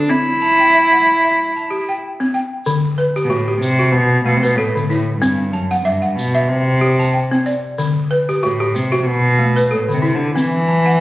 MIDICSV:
0, 0, Header, 1, 4, 480
1, 0, Start_track
1, 0, Tempo, 641711
1, 69, Time_signature, 4, 2, 24, 8
1, 8230, End_track
2, 0, Start_track
2, 0, Title_t, "Balafon"
2, 0, Program_c, 0, 12
2, 0, Note_on_c, 0, 69, 55
2, 71, Note_on_c, 0, 60, 70
2, 205, Note_off_c, 0, 69, 0
2, 310, Note_off_c, 0, 60, 0
2, 312, Note_on_c, 0, 81, 49
2, 448, Note_on_c, 0, 79, 57
2, 555, Note_on_c, 0, 76, 73
2, 683, Note_off_c, 0, 81, 0
2, 689, Note_on_c, 0, 78, 55
2, 792, Note_off_c, 0, 76, 0
2, 792, Note_off_c, 0, 79, 0
2, 930, Note_on_c, 0, 76, 71
2, 1032, Note_off_c, 0, 78, 0
2, 1165, Note_off_c, 0, 76, 0
2, 1169, Note_on_c, 0, 81, 51
2, 1275, Note_on_c, 0, 67, 64
2, 1412, Note_on_c, 0, 79, 57
2, 1511, Note_off_c, 0, 67, 0
2, 1512, Note_off_c, 0, 81, 0
2, 1647, Note_on_c, 0, 60, 58
2, 1743, Note_off_c, 0, 79, 0
2, 1752, Note_on_c, 0, 79, 51
2, 1883, Note_off_c, 0, 60, 0
2, 1992, Note_on_c, 0, 50, 75
2, 2122, Note_off_c, 0, 79, 0
2, 2228, Note_on_c, 0, 71, 49
2, 2229, Note_off_c, 0, 50, 0
2, 2365, Note_on_c, 0, 67, 58
2, 2468, Note_on_c, 0, 66, 71
2, 2592, Note_off_c, 0, 67, 0
2, 2600, Note_off_c, 0, 71, 0
2, 2601, Note_on_c, 0, 67, 52
2, 2707, Note_off_c, 0, 66, 0
2, 2836, Note_on_c, 0, 66, 66
2, 2947, Note_off_c, 0, 67, 0
2, 3077, Note_off_c, 0, 66, 0
2, 3185, Note_on_c, 0, 57, 64
2, 3313, Note_on_c, 0, 71, 67
2, 3425, Note_off_c, 0, 57, 0
2, 3425, Note_on_c, 0, 69, 60
2, 3557, Note_on_c, 0, 50, 59
2, 3662, Note_off_c, 0, 71, 0
2, 3665, Note_on_c, 0, 64, 59
2, 3797, Note_off_c, 0, 50, 0
2, 3798, Note_off_c, 0, 69, 0
2, 3902, Note_on_c, 0, 60, 77
2, 4038, Note_off_c, 0, 64, 0
2, 4139, Note_on_c, 0, 81, 52
2, 4143, Note_off_c, 0, 60, 0
2, 4270, Note_on_c, 0, 78, 66
2, 4376, Note_on_c, 0, 76, 77
2, 4494, Note_off_c, 0, 78, 0
2, 4503, Note_on_c, 0, 78, 51
2, 4515, Note_off_c, 0, 81, 0
2, 4620, Note_off_c, 0, 76, 0
2, 4747, Note_on_c, 0, 76, 78
2, 4857, Note_off_c, 0, 78, 0
2, 4992, Note_off_c, 0, 76, 0
2, 5096, Note_on_c, 0, 67, 70
2, 5232, Note_on_c, 0, 81, 72
2, 5337, Note_on_c, 0, 79, 55
2, 5341, Note_off_c, 0, 67, 0
2, 5471, Note_on_c, 0, 60, 68
2, 5580, Note_on_c, 0, 74, 64
2, 5582, Note_off_c, 0, 81, 0
2, 5714, Note_off_c, 0, 79, 0
2, 5715, Note_off_c, 0, 60, 0
2, 5822, Note_on_c, 0, 50, 74
2, 5956, Note_off_c, 0, 74, 0
2, 6064, Note_off_c, 0, 50, 0
2, 6064, Note_on_c, 0, 71, 55
2, 6200, Note_on_c, 0, 67, 65
2, 6306, Note_on_c, 0, 66, 78
2, 6426, Note_off_c, 0, 67, 0
2, 6435, Note_on_c, 0, 67, 64
2, 6438, Note_off_c, 0, 71, 0
2, 6546, Note_off_c, 0, 66, 0
2, 6672, Note_on_c, 0, 66, 76
2, 6785, Note_off_c, 0, 67, 0
2, 6916, Note_off_c, 0, 66, 0
2, 7022, Note_on_c, 0, 57, 68
2, 7153, Note_on_c, 0, 71, 68
2, 7262, Note_on_c, 0, 69, 62
2, 7265, Note_off_c, 0, 57, 0
2, 7394, Note_on_c, 0, 50, 65
2, 7496, Note_on_c, 0, 64, 62
2, 7505, Note_off_c, 0, 71, 0
2, 7639, Note_off_c, 0, 50, 0
2, 7639, Note_off_c, 0, 69, 0
2, 7746, Note_on_c, 0, 60, 71
2, 7877, Note_off_c, 0, 64, 0
2, 7988, Note_on_c, 0, 81, 50
2, 7989, Note_off_c, 0, 60, 0
2, 8122, Note_on_c, 0, 78, 61
2, 8230, Note_off_c, 0, 78, 0
2, 8230, Note_off_c, 0, 81, 0
2, 8230, End_track
3, 0, Start_track
3, 0, Title_t, "Cello"
3, 0, Program_c, 1, 42
3, 0, Note_on_c, 1, 62, 78
3, 77, Note_on_c, 1, 64, 105
3, 89, Note_off_c, 1, 62, 0
3, 1512, Note_off_c, 1, 64, 0
3, 2425, Note_on_c, 1, 47, 72
3, 2457, Note_on_c, 1, 45, 76
3, 2468, Note_off_c, 1, 47, 0
3, 2691, Note_off_c, 1, 45, 0
3, 2696, Note_on_c, 1, 48, 91
3, 2934, Note_on_c, 1, 47, 99
3, 2945, Note_off_c, 1, 48, 0
3, 3166, Note_off_c, 1, 47, 0
3, 3170, Note_on_c, 1, 47, 83
3, 3266, Note_on_c, 1, 48, 69
3, 3277, Note_off_c, 1, 47, 0
3, 3311, Note_on_c, 1, 47, 97
3, 3323, Note_off_c, 1, 48, 0
3, 3409, Note_on_c, 1, 45, 84
3, 3420, Note_off_c, 1, 47, 0
3, 3640, Note_off_c, 1, 45, 0
3, 3644, Note_on_c, 1, 45, 77
3, 3870, Note_off_c, 1, 45, 0
3, 3875, Note_on_c, 1, 43, 83
3, 4119, Note_on_c, 1, 42, 77
3, 4131, Note_off_c, 1, 43, 0
3, 4362, Note_off_c, 1, 42, 0
3, 4366, Note_on_c, 1, 43, 71
3, 4606, Note_on_c, 1, 47, 85
3, 4617, Note_off_c, 1, 43, 0
3, 4850, Note_on_c, 1, 48, 94
3, 4861, Note_off_c, 1, 47, 0
3, 5578, Note_off_c, 1, 48, 0
3, 6301, Note_on_c, 1, 45, 72
3, 6541, Note_on_c, 1, 48, 78
3, 6553, Note_off_c, 1, 45, 0
3, 6735, Note_off_c, 1, 48, 0
3, 6739, Note_on_c, 1, 48, 61
3, 6783, Note_on_c, 1, 47, 92
3, 6794, Note_off_c, 1, 48, 0
3, 7277, Note_on_c, 1, 45, 79
3, 7288, Note_off_c, 1, 47, 0
3, 7427, Note_on_c, 1, 48, 80
3, 7438, Note_off_c, 1, 45, 0
3, 7590, Note_on_c, 1, 50, 79
3, 7601, Note_off_c, 1, 48, 0
3, 7749, Note_off_c, 1, 50, 0
3, 7753, Note_on_c, 1, 52, 104
3, 8230, Note_off_c, 1, 52, 0
3, 8230, End_track
4, 0, Start_track
4, 0, Title_t, "Drums"
4, 1988, Note_on_c, 9, 82, 46
4, 2062, Note_off_c, 9, 82, 0
4, 2364, Note_on_c, 9, 82, 17
4, 2439, Note_off_c, 9, 82, 0
4, 2712, Note_on_c, 9, 82, 45
4, 2787, Note_off_c, 9, 82, 0
4, 3322, Note_on_c, 9, 82, 46
4, 3397, Note_off_c, 9, 82, 0
4, 3565, Note_on_c, 9, 82, 19
4, 3640, Note_off_c, 9, 82, 0
4, 3668, Note_on_c, 9, 82, 19
4, 3743, Note_off_c, 9, 82, 0
4, 3907, Note_on_c, 9, 82, 57
4, 3982, Note_off_c, 9, 82, 0
4, 4281, Note_on_c, 9, 82, 20
4, 4356, Note_off_c, 9, 82, 0
4, 4627, Note_on_c, 9, 82, 51
4, 4702, Note_off_c, 9, 82, 0
4, 5240, Note_on_c, 9, 82, 47
4, 5315, Note_off_c, 9, 82, 0
4, 5483, Note_on_c, 9, 82, 17
4, 5557, Note_off_c, 9, 82, 0
4, 5586, Note_on_c, 9, 82, 17
4, 5660, Note_off_c, 9, 82, 0
4, 5825, Note_on_c, 9, 82, 55
4, 5900, Note_off_c, 9, 82, 0
4, 6201, Note_on_c, 9, 82, 18
4, 6276, Note_off_c, 9, 82, 0
4, 6549, Note_on_c, 9, 82, 48
4, 6623, Note_off_c, 9, 82, 0
4, 7161, Note_on_c, 9, 82, 48
4, 7236, Note_off_c, 9, 82, 0
4, 7408, Note_on_c, 9, 82, 22
4, 7482, Note_off_c, 9, 82, 0
4, 7524, Note_on_c, 9, 82, 21
4, 7598, Note_off_c, 9, 82, 0
4, 7760, Note_on_c, 9, 82, 63
4, 7835, Note_off_c, 9, 82, 0
4, 8130, Note_on_c, 9, 82, 20
4, 8205, Note_off_c, 9, 82, 0
4, 8230, End_track
0, 0, End_of_file